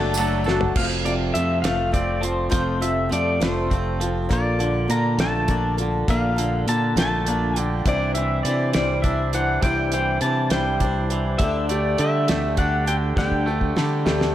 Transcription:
Already playing: F#1 F#3 A3 D4 F#4 A4 D5 F#5 A5
0.14 F#3 A3, ride, tambourine
0.18 A3 D4 F#4 A4 A5
0.44 D4 A4, snare, tambourine
0.48 A3 D4 F#4 F#5
0.61 floor tom
0.76 F1 F2 F3 A3 C4 F4 A4 F5, kick, crash
1.05 C3 C4 F4 A4 D5, closed hi-hat
1.34 F2 F3 A3 C4 E5, closed hi-hat
1.38 F4 A4
1.62 F1 A3 C4 F4 A4 F5, snare, closed hi-hat
1.66 F3 A3
1.92 A3 C4 F4 A4 D5, kick, closed hi-hat
2.21 F3 C4 F4 A4 C5, closed hi-hat
2.49 F1 F2 F3 A3 C4 F4 A4 C5, kick, closed hi-hat
2.81 C3 C4 F4 A4 E5, closed hi-hat
3.09 F2 F3 A3 C4 F4 A4 D5, closed hi-hat
3.40 F1 F3 A3 C4 F4 A4 C5, snare, closed hi-hat
3.70 A3 C4 F4 A4, kick, closed hi-hat
4.00 F3 C4 F4 A4, closed hi-hat
4.29 A#1 A#2 A#3 D4 F4 A4 D5, kick, closed hi-hat
4.59 D3 D4 F4 A4, closed hi-hat
4.88 A#2 D3 A#3 D4 F4 A4 A#5, closed hi-hat
5.18 A#1 A3 A#3 D4 F4 A4 A5, snare, closed hi-hat
5.48 A#3 D4 F4 A4, kick, closed hi-hat
5.77 D4 F4 A4, closed hi-hat
5.82 D3
6.08 A#1 A#2 A#3 D4 F4 A4 F5, kick, closed hi-hat
6.36 D3 D4 F4 A4, closed hi-hat
6.66 A#2 D3 A#3 D4 F4 A4 A5, closed hi-hat
6.96 A#1 A3 A#3 D4 F4 A4 A5, snare, closed hi-hat
7.27 A#3 D4 F4 A4, closed hi-hat
7.56 D3 D4 F4 A4 G5, closed hi-hat
7.86 C2 C3 E3 G3 D4 E4 C5 D5, kick, closed hi-hat
8.14 E3 G3 D4 E4 C5 E5, closed hi-hat
8.43 C3 E3 G3 D4 D5, closed hi-hat
8.48 E4 C5
8.73 C2 C3 E3 G3 D4 E4 C5 D5, snare, closed hi-hat
9.02 G3 D4 E4 E5, kick, closed hi-hat
9.07 C5
9.33 E3 G3 D4 E4 C5 F#5, closed hi-hat
9.62 C2 C3 E3 G3 D4 E4 C5 D5 G5, kick, closed hi-hat
9.66 C5
9.92 E3 D4 E4 C5 G5, closed hi-hat
9.97 G3
10.21 C3 E3 G3 D4 E4 A5, closed hi-hat
10.26 C5
10.50 C2 C3 E3 G3 D4 E4 C5 D5 G5, snare, closed hi-hat
10.80 G3 D4 E4 C5, kick, closed hi-hat
11.10 E3 G3 D4 E4 C5, closed hi-hat
11.38 D2 D3 G3 G4 A4 D5 E5, kick, closed hi-hat
11.43 D4 G4 A4
11.69 A3 D4 G4 A4 D5, closed hi-hat
11.98 D3 G3 D4 G4 A4 E5, closed hi-hat
12.28 D2 D3 G3 A3 D4 G4 A4 D5, snare, closed hi-hat
12.57 G3 D4 G4 A4 F#5, kick, closed hi-hat
12.86 D3 D4 G4 A4 G5, closed hi-hat
13.17 D2 D3 G3 D4 G4 A4 D5 G5, kick, snare
13.32 kick
13.46 A3 G4 A4
13.50 D4
13.61 kick
13.76 D3 G3 D4 G4 A4, snare
14.05 D2 D3 G3 A3 D4 G4 A4 D5, snare
14.21 snare

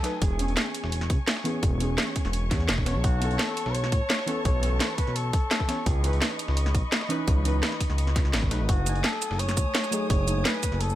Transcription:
Already playing: A3 A4 G#5 D#6, downlifter
0.03 F#3 A3 D#4 B4, snare, closed hi-hat
0.22 E1 G#4 C#5 C#6, kick, closed hi-hat
0.37 E3 B3 C#4, closed hi-hat
0.42 G#4
0.48 E1, closed hi-hat
0.57 snare, closed hi-hat
0.75 closed hi-hat
0.84 E1, snare
0.92 closed hi-hat
1.01 snare
1.10 C#2, kick, closed hi-hat
1.27 snare, closed hi-hat
1.37 snare
1.44 E3 B3 C#4 G#4, closed hi-hat
1.63 E1, kick, closed hi-hat
1.78 E3 B3 C#4, closed hi-hat
1.83 G#4
1.90 E1
1.98 snare, closed hi-hat
2.16 kick, closed hi-hat
2.25 E1, snare
2.33 closed hi-hat
2.51 E2, kick, snare, closed hi-hat
2.60 snare
2.69 E1, snare, closed hi-hat
2.78 kick
2.85 E3 B3 C#4 C#5 A5, snare, closed hi-hat
2.95 B1
3.04 B1 F#4, kick, closed hi-hat
3.19 E3 B3 C#4, closed hi-hat
3.24 A4
3.31 B1, closed hi-hat
3.39 A4, snare, closed hi-hat
3.57 closed hi-hat
3.66 B1, snare
3.75 C#5, closed hi-hat
3.84 snare
3.92 A1, kick, closed hi-hat
4.10 snare, closed hi-hat
4.19 snare
4.26 E3 B3 C#4 A4, closed hi-hat
4.45 B1 C#5, kick, closed hi-hat
4.60 E3 B3 C#4, closed hi-hat
4.66 A4
4.72 B1
4.80 B4, snare, closed hi-hat
4.88 C#5
4.95 B4, kick, closed hi-hat
5.07 B1, snare
5.16 A4, closed hi-hat
5.33 kick, closed hi-hat
5.51 snare, closed hi-hat
5.60 kick
5.67 E3 B3 C#4 C#5, snare, closed hi-hat
5.86 C#2 G#4 D#5 B5, kick, closed hi-hat
6.01 E3 C#4 D#4, closed hi-hat
6.07 B4
6.13 C#2, closed hi-hat
6.22 snare, closed hi-hat
6.39 closed hi-hat
6.48 C#2, snare
6.57 closed hi-hat
6.66 snare
6.75 B1, kick, closed hi-hat
6.92 snare, closed hi-hat
7.01 snare
7.09 E3 C#4 D#4 B4, closed hi-hat
7.28 C#2, kick, closed hi-hat
7.43 E3 C#4 D#4, closed hi-hat
7.48 B4
7.54 C#2
7.63 snare, closed hi-hat
7.72 snare
7.80 kick, closed hi-hat
7.90 C#2, snare
7.98 closed hi-hat
8.07 snare
8.16 kick, snare, closed hi-hat
8.25 snare
8.33 G#1, snare, closed hi-hat
8.43 kick
8.50 B1 F#3 A3 D#4 B4, snare, closed hi-hat
8.60 G#1
8.69 F#1 A3 F#4 G#5 D#6, kick, closed hi-hat
8.84 F#3 A3 D#4, closed hi-hat, shaker
8.89 G#5
8.95 F#1, closed hi-hat
9.04 A4, snare, closed hi-hat
9.22 closed hi-hat, shaker
9.31 F#1, snare
9.39 C#5, closed hi-hat
9.49 snare, shaker
9.57 D#1, kick, closed hi-hat, shaker
9.75 snare, closed hi-hat
9.84 snare, shaker
9.91 F#3 A3 D#4 G#4, closed hi-hat, shaker
10.10 F#1 C#5, kick, closed hi-hat
10.25 F#3 A3 D#4, closed hi-hat, shaker
10.30 G#5
10.37 F#1
10.45 B4, snare, closed hi-hat
10.63 kick, closed hi-hat, shaker
10.72 F#1, snare
10.80 A4, closed hi-hat
10.90 shaker

